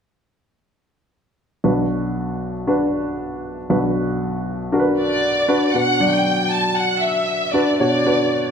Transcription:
1.64 upright piano B1 B2 D4 F#4 B4
2.67 upright piano D4 F#4 B4
3.70 upright piano B1 B2 D4 F#4 B4
4.72 upright piano D4 F#4 A#4
4.80 upright piano B4
5.00 violin section D5
5.48 upright piano D4 F#4 B4
5.74 upright piano B2 D4 F#4 B4, violin section F#5
6.00 upright piano F#3 D4 D5
6.11 violin section G5
6.50 violin section A5
6.75 violin section F#5
7.01 violin section E5
7.52 upright piano D4 F#4 B4, violin section D5
7.80 upright piano B2 D4 F#4 C#5, violin section D5
8.06 upright piano D4 F#4 B4

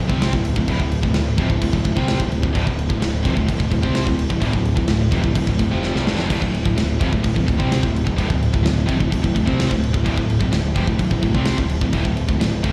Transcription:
0.08 picked electric bass C2, distorted electric guitar C3 G3 C4, kick
0.22 snare, crash
0.32 picked electric bass D1, distorted electric guitar D2 A2, kick
0.45 crash
0.56 picked electric bass D1, distorted electric guitar D2 A2, kick
0.67 picked electric bass D1, distorted electric guitar D2 A2, kick, crash
0.79 picked electric bass D1, distorted electric guitar D2 A2, kick
0.92 crash
1.02 picked electric bass D1, distorted electric guitar D2 A2, kick
1.13 picked electric bass D1, distorted electric guitar D2 A2, snare, crash
1.37 picked electric bass F1, distorted electric guitar F2 C3, kick, crash
1.50 picked electric bass D1, distorted electric guitar D2 A2, kick
1.62 picked electric bass D1, distorted electric guitar D2 A2, kick, crash
1.73 picked electric bass D1, distorted electric guitar D2 A2, kick
1.84 picked electric bass D1, distorted electric guitar D2 A2, kick, crash
1.96 picked electric bass C2, distorted electric guitar C3 G3 C4, kick
2.08 snare, crash
2.19 picked electric bass D1, distorted electric guitar D2 A2, kick
2.32 crash
2.42 picked electric bass D1, distorted electric guitar D2 A2, kick
2.53 picked electric bass D1, distorted electric guitar D2 A2, kick, crash
2.66 picked electric bass D1, distorted electric guitar D2 A2, kick
2.79 crash
2.89 picked electric bass D1, distorted electric guitar D2 A2, kick
3.00 picked electric bass D1, distorted electric guitar D2 A2, snare, crash
3.23 picked electric bass F1, distorted electric guitar F2 C3, kick, crash
3.36 picked electric bass D1, distorted electric guitar D2 A2, kick
3.46 picked electric bass D1, distorted electric guitar D2 A2, kick, crash
3.58 picked electric bass D1, distorted electric guitar D2 A2, kick
3.71 picked electric bass D1, distorted electric guitar D2 A2, kick, crash
3.83 picked electric bass C2, distorted electric guitar C3 G3 C4, kick
3.95 snare, crash
4.05 picked electric bass D1, distorted electric guitar D2 A2, kick
4.19 crash
4.29 picked electric bass D1, distorted electric guitar D2 A2, kick
4.40 picked electric bass D1, distorted electric guitar D2 A2, kick, crash
4.52 picked electric bass D1, distorted electric guitar D2 A2, kick
4.65 crash
4.75 picked electric bass D1, distorted electric guitar D2 A2, kick
4.87 picked electric bass D1, distorted electric guitar D2 A2, snare, crash
5.11 picked electric bass F1, distorted electric guitar F2 C3, kick, crash
5.22 picked electric bass D1, distorted electric guitar D2 A2, kick
5.35 picked electric bass D1, distorted electric guitar D2 A2, kick, crash
5.47 picked electric bass D1, distorted electric guitar D2 A2, kick
5.59 picked electric bass D1, distorted electric guitar D2 A2, kick, crash
5.70 picked electric bass F1, distorted electric guitar F2 C3 F3
5.83 snare
5.94 picked electric bass C2, distorted electric guitar C3 G3, snare
6.06 picked electric bass G1, distorted electric guitar G2 D3, snare
6.17 picked electric bass F1, distorted electric guitar F2 C3, snare
6.30 picked electric bass D1, distorted electric guitar D2 A2, kick, crash
6.42 picked electric bass D1, distorted electric guitar D2 A2, kick
6.54 crash
6.65 picked electric bass D1, distorted electric guitar D2 A2, kick
6.76 picked electric bass D1, distorted electric guitar D2 A2, snare, crash
7.00 picked electric bass F1, distorted electric guitar F2 C3, kick, crash
7.12 picked electric bass D1, distorted electric guitar D2 A2, kick
7.23 picked electric bass D1, distorted electric guitar D2 A2, kick, crash
7.34 picked electric bass D1, distorted electric guitar D2 A2, kick
7.46 picked electric bass D1, distorted electric guitar D2 A2, kick, crash
7.58 picked electric bass C2, distorted electric guitar C3 G3 C4, kick
7.72 snare, crash
7.82 picked electric bass D1, distorted electric guitar D2 A2, kick
7.96 crash
8.07 picked electric bass D1, distorted electric guitar D2 A2, kick
8.18 picked electric bass D1, distorted electric guitar D2 A2, kick, crash
8.30 picked electric bass D1, distorted electric guitar D2 A2, kick
8.42 crash
8.54 picked electric bass D1, distorted electric guitar D2 A2, kick
8.63 picked electric bass D1, distorted electric guitar D2 A2, snare, crash
8.87 picked electric bass F1, distorted electric guitar F2 C3, kick, crash
9.00 picked electric bass D1, distorted electric guitar D2 A2, kick
9.11 picked electric bass D1, distorted electric guitar D2 A2, kick, crash
9.23 picked electric bass D1, distorted electric guitar D2 A2, kick
9.34 picked electric bass D1, distorted electric guitar D2 A2, kick, crash
9.45 picked electric bass C2, distorted electric guitar C3 G3 C4, kick
9.60 snare, crash
9.69 picked electric bass D1, distorted electric guitar D2 A2, kick
9.83 crash
9.93 picked electric bass D1, distorted electric guitar D2 A2, kick
10.04 picked electric bass D1, distorted electric guitar D2 A2, kick, crash
10.15 picked electric bass D1, distorted electric guitar D2 A2, kick
10.30 crash
10.39 picked electric bass D1, distorted electric guitar D2 A2, kick
10.51 picked electric bass D1, distorted electric guitar D2 A2, snare, crash
10.74 picked electric bass F1, distorted electric guitar F2 C3, kick, crash
10.86 picked electric bass D1, distorted electric guitar D2 A2, kick
10.99 picked electric bass D1, distorted electric guitar D2 A2, kick, crash
11.11 picked electric bass D1, distorted electric guitar D2 A2, kick
11.22 picked electric bass D1, distorted electric guitar D2 A2, kick, crash
11.34 picked electric bass C2, distorted electric guitar C3 G3 C4, kick
11.46 snare, crash
11.58 picked electric bass D1, distorted electric guitar D2 A2, kick
11.69 crash
11.81 picked electric bass D1, distorted electric guitar D2 A2, kick
11.92 picked electric bass D1, distorted electric guitar D2 A2, kick, crash
12.05 picked electric bass D1, distorted electric guitar D2 A2, kick
12.17 crash
12.28 picked electric bass D1, distorted electric guitar D2 A2, kick
12.39 picked electric bass D1, distorted electric guitar D2 A2, snare, crash
12.63 picked electric bass F1, distorted electric guitar F2 C3, kick, crash

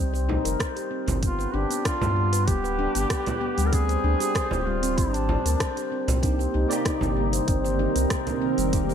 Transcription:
Already playing: sub bass C2, handpan C4
0.14 handpan C5, cabasa
0.29 handpan D#4, frame drum
0.45 sub bass F1, handpan A#4, closed hi-hat, cabasa
0.60 handpan C5, kick, cross-stick, closed hi-hat, cabasa
0.76 handpan G4, closed hi-hat, cabasa
0.91 handpan C4
1.07 sub bass G1, handpan C4, closed hi-hat, frame drum, cabasa
1.22 handpan B3, duduk F4, kick, closed hi-hat, cabasa
1.39 handpan B4, cabasa
1.54 sub bass G1, handpan D4, duduk G4
1.70 handpan B3, closed hi-hat, cabasa
1.85 handpan D4, duduk F4, kick, cross-stick, closed hi-hat, cabasa
2.01 sub bass G2, handpan B3, frame drum, cabasa
2.16 handpan G3
2.33 handpan B4, closed hi-hat, cabasa
2.47 sub bass D1, handpan B3, duduk G4, kick, closed hi-hat, cabasa
2.64 handpan B4, cabasa
2.79 handpan D4
2.95 sub bass G1, handpan B3, closed hi-hat, cabasa
3.10 handpan B4, kick, cross-stick, closed hi-hat, cabasa
3.26 handpan B3, closed hi-hat, frame drum, cabasa
3.41 handpan B3
3.58 sub bass D2, handpan G3, closed hi-hat, cabasa
3.66 duduk A#4
3.73 handpan C4, duduk G#4, kick, closed hi-hat, cabasa
3.89 handpan C5, closed hi-hat, cabasa
4.04 sub bass D2, handpan D4
4.20 handpan G4, closed hi-hat, cabasa
4.35 handpan C5, kick, cross-stick, closed hi-hat, cabasa
4.51 sub bass D1, handpan C4, frame drum, cabasa
4.59 duduk G4
4.66 handpan G3, duduk F4
4.83 handpan C4, closed hi-hat, cabasa
4.98 sub bass G#1, handpan C4, duduk D4, kick, closed hi-hat, cabasa
5.14 handpan C5, closed hi-hat, cabasa
5.29 handpan D4, frame drum
5.45 sub bass D2, handpan A#4, closed hi-hat, cabasa
5.60 handpan C5, kick, cross-stick, closed hi-hat, cabasa
5.77 handpan G4, closed hi-hat, cabasa
5.92 handpan C4
6.08 sub bass C2, handpan C4, closed hi-hat, frame drum, cabasa
6.22 synth drone C3, tine electric piano A#3 D4 D#4 G4, handpan C4, kick, closed hi-hat, cabasa
6.39 synth drone A#4, handpan C5, cabasa
6.54 sub bass C2, handpan D#4
6.64 synth drone C4
6.68 tine electric piano A#3 D#4 D5, handpan C4, closed hi-hat, cabasa
6.72 tine electric piano G4
6.85 handpan D#4, kick, cross-stick, closed hi-hat, cabasa
7.01 sub bass G1, synth drone D#3, handpan C4, frame drum, cabasa
7.17 handpan G3
7.33 handpan C5, closed hi-hat, cabasa
7.48 sub bass G1, handpan C4, kick, closed hi-hat, cabasa
7.64 handpan C5, cabasa
7.79 handpan D#4
7.95 sub bass C2, handpan C4, closed hi-hat, cabasa
8.10 handpan C5, kick, cross-stick, closed hi-hat, cabasa
8.27 handpan C4, closed hi-hat, frame drum, cabasa
8.42 handpan C4
8.58 sub bass F1, handpan G3, closed hi-hat, cabasa
8.72 tine electric piano G#3 A#3 D#4 G4, handpan C4, kick, closed hi-hat, cabasa
8.89 handpan C5, cabasa

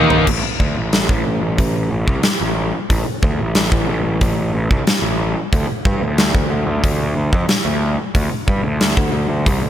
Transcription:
Already playing: picked electric bass D#2, overdriven electric guitar D#3 A#3 D#4
0.10 floor tom
0.27 picked electric bass A1, kick, crash
0.44 muted picked electric bass stroke
0.60 picked electric bass D2, kick
0.77 picked electric bass A1
0.93 snare, open hi-hat
1.09 picked electric bass A1, kick
1.26 picked electric bass A1
1.41 picked electric bass A1
1.58 picked electric bass A1, kick, open hi-hat
1.91 picked electric bass A1
2.07 picked electric bass C2, kick
2.23 muted picked electric bass stroke, snare, open hi-hat
2.41 picked electric bass A1
2.90 picked electric bass A1, kick, open hi-hat
3.06 muted picked electric bass stroke
3.23 picked electric bass D2, kick
3.40 picked electric bass A1
3.55 snare, open hi-hat
3.72 picked electric bass A1, kick
3.88 picked electric bass A1
4.04 picked electric bass A1
4.21 picked electric bass A1, kick, open hi-hat
4.54 picked electric bass A1
4.71 picked electric bass C2, kick
4.86 muted picked electric bass stroke, snare, open hi-hat
5.02 picked electric bass A1
5.53 picked electric bass D2, kick, open hi-hat
5.68 muted picked electric bass stroke
5.85 picked electric bass G2, kick
6.01 picked electric bass D2
6.18 snare, open hi-hat
6.34 picked electric bass D2, kick
6.50 picked electric bass D2
6.66 picked electric bass D2
6.84 picked electric bass D2, kick, open hi-hat
7.16 picked electric bass D2
7.33 picked electric bass F2, kick
7.48 muted picked electric bass stroke, snare, open hi-hat
7.65 picked electric bass D2
8.15 picked electric bass D2, kick, open hi-hat
8.31 muted picked electric bass stroke
8.47 picked electric bass G2, kick
8.63 picked electric bass D2
8.81 snare, open hi-hat
8.97 picked electric bass D2, kick
9.12 picked electric bass D2
9.29 picked electric bass D2
9.46 picked electric bass C2, kick, open hi-hat
9.62 picked electric bass D2

